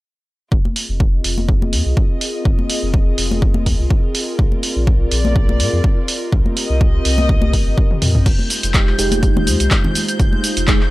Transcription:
0.52 0.61 F1 loud
0.52 6.04 C4 medium
0.52 8.26 F4 medium
0.52 4.35 F4 medium
0.52 6.04 G#4 medium
0.52 4.35 D#5 medium
0.52 kick loud
0.65 8.26 A#4 medium
0.65 high conga medium
0.76 open hi-hat loud
0.89 1.19 F1 loud
1.00 kick loud
1.24 1.74 F1 medium
1.24 open hi-hat medium
1.31 4.39 D#5 medium
1.38 high conga medium
1.49 kick loud
1.62 high conga medium
1.73 1.82 F2 medium
1.73 open hi-hat loud
1.86 1.94 C2 loud
1.97 kick loud
2.21 open hi-hat medium
2.45 2.55 F1 loud
2.45 kick loud
2.59 high conga medium
2.70 open hi-hat loud
2.83 3.13 F1 loud
2.94 kick loud
3.18 3.68 F1 medium
3.18 open hi-hat medium
3.31 high conga medium
3.42 kick loud
3.54 high conga loud
3.66 3.76 F2 medium
3.66 kick medium
3.66 open hi-hat loud
3.79 3.87 C2 loud
3.90 kick loud
4.15 open hi-hat medium
4.39 4.48 A#1 medium
4.39 8.22 A#4 medium
4.39 6.07 D5 medium
4.39 kick loud
4.52 high conga medium
4.63 open hi-hat loud
4.76 5.06 A#1 medium
4.87 kick loud
5.10 5.61 A#1 medium
5.10 6.08 D5 medium
5.10 open hi-hat medium
5.25 high conga medium
5.36 kick loud
5.49 high conga medium
5.60 5.69 A#2 medium
5.60 open hi-hat loud
5.73 5.81 F2 loud
5.84 kick loud
6.08 8.24 C4 medium
6.08 8.24 G4 medium
6.08 8.24 D#5 medium
6.08 open hi-hat loud
6.32 6.42 C2 medium
6.32 kick loud
6.46 high conga medium
6.57 open hi-hat loud
6.64 8.26 D#5 medium
6.70 7.00 C2 loud
6.81 kick loud
7.05 7.55 C2 medium
7.05 open hi-hat medium
7.18 high conga medium
7.29 kick loud
7.42 high conga medium
7.53 7.63 G1 medium
7.53 kick medium
7.53 open hi-hat loud
7.67 7.74 G1 loud
7.78 kick loud
7.91 high tom medium
8.02 8.16 F2 medium
8.02 open hi-hat medium
8.02 mid tom medium
8.15 8.23 G1 loud
8.15 mid tom medium
8.26 8.35 F1 loud
8.26 10.90 G#3 medium
8.26 10.90 D#4 medium
8.26 10.90 F4 medium
8.26 10.90 C5 medium
8.26 10.90 G6 medium
8.26 kick loud
8.26 closed hi-hat medium
8.26 crash medium
8.26 shaker soft
8.39 high conga medium
8.50 open hi-hat loud
8.50 shaker medium
8.63 8.93 F1 loud
8.63 closed hi-hat medium
8.63 shaker soft
8.74 8.96 G#3 medium
8.74 8.96 D#4 medium
8.74 8.96 G4 medium
8.74 kick loud
8.74 clap loud
8.74 closed hi-hat medium
8.74 shaker soft
8.87 clap soft
8.98 9.49 F1 medium
8.98 9.20 G#3 medium
8.98 9.20 D#4 medium
8.98 9.20 G4 loud
8.98 open hi-hat medium
8.98 shaker medium
9.12 closed hi-hat medium
9.12 high conga medium
9.12 shaker soft
9.22 10.65 G#3 medium
9.22 10.65 D#4 medium
9.22 10.66 G4 medium
9.22 kick loud
9.22 closed hi-hat medium
9.22 shaker soft
9.37 high conga medium
9.37 low conga medium
9.47 9.56 F2 medium
9.47 open hi-hat loud
9.47 shaker medium
9.60 9.68 C2 loud
9.60 closed hi-hat medium
9.60 shaker soft
9.71 kick loud
9.71 clap loud
9.71 closed hi-hat medium
9.71 shaker soft
9.84 low conga medium
9.95 open hi-hat medium
9.95 high conga medium
9.95 shaker medium
10.08 closed hi-hat medium
10.08 shaker soft
10.20 10.29 F1 loud
10.20 kick loud
10.20 closed hi-hat soft
10.20 shaker soft
10.33 high conga medium
10.44 open hi-hat loud
10.44 shaker medium
10.57 10.87 F1 loud
10.57 closed hi-hat medium
10.57 shaker soft
10.67 10.80 G#3 medium
10.67 10.80 D#4 medium
10.67 10.80 G#4 loud
10.67 kick loud
10.67 clap loud
10.67 closed hi-hat medium
10.67 shaker soft
10.81 clap soft

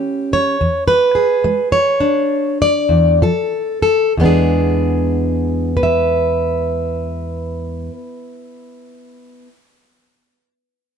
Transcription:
0.00 0.53 A3 medium
0.00 0.56 C#4 medium
0.00 0.56 G4 soft
0.33 0.87 C#5 loud
0.61 1.38 E2 medium
0.88 1.72 B4 medium
1.15 3.19 G#4 soft
1.44 2.25 G#3 medium
1.72 2.61 C#5 loud
2.00 3.18 D4 soft
2.62 3.11 D5 loud
2.89 3.22 E2 medium
3.22 4.10 F3 medium
3.22 3.81 A4 medium
3.82 4.13 A4 medium
4.17 7.88 E2 medium
4.17 7.91 G#3 medium
4.17 7.92 B3 medium
4.24 5.76 D4 medium
4.24 5.83 G#4 medium
5.77 9.48 B4 medium
5.83 9.54 E5 medium

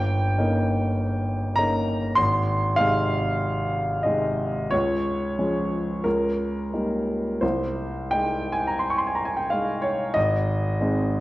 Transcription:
0.00 0.38 G1 medium
0.00 1.58 G5 medium
0.38 1.54 C#3 soft
0.38 1.54 A#3 soft
0.38 1.55 D#4 medium
1.56 2.15 C#3 soft
1.56 2.15 A#3 soft
1.56 2.15 D#4 soft
1.56 2.18 A#5 medium
2.16 2.77 G#1 medium
2.16 2.78 C6 medium
2.76 4.01 C3 soft
2.76 4.01 G#3 soft
2.76 4.01 D#4 medium
2.76 4.04 F5 medium
4.03 4.67 C3 soft
4.03 4.68 G#3 soft
4.03 4.68 D#4 medium
4.03 4.70 D#5 medium
4.71 5.36 C#2 medium
4.71 6.04 C#5 medium
5.39 6.01 F3 soft
5.39 6.01 G#3 soft
5.39 6.01 C#4 soft
6.04 6.71 C#2 medium
6.04 7.41 A#4 medium
6.73 7.39 G3 soft
6.73 7.39 A#3 soft
6.73 7.39 D#4 soft
7.41 8.11 C2 soft
7.41 9.49 C5 medium
8.11 9.46 G#3 soft
8.11 9.46 D#4 soft
8.11 8.53 G5 medium
8.53 8.69 G#5 medium
8.67 8.81 A#5 medium
8.79 8.91 C6 medium
8.90 9.00 C#6 medium
8.98 9.07 C6 medium
9.07 9.16 G#5 medium
9.15 9.26 A#5 soft
9.25 9.37 G#5 medium
9.37 9.49 G5 medium
9.50 10.13 G#3 soft
9.50 10.13 D#4 soft
9.50 9.84 F5 medium
9.82 10.15 C#5 medium
10.14 10.78 G#1 medium
10.14 11.20 D#5 medium
10.81 11.20 G#3 soft
10.81 11.20 C4 soft
10.81 11.20 D#4 medium

